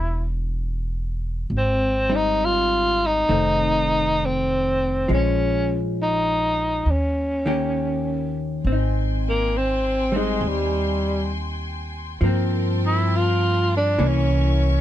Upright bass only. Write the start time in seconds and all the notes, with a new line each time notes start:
Already playing: E1
1.50 G#1
3.29 F1
5.09 A#1
6.86 D#2
8.64 G#1
10.41 D#2
12.21 G2
13.99 C2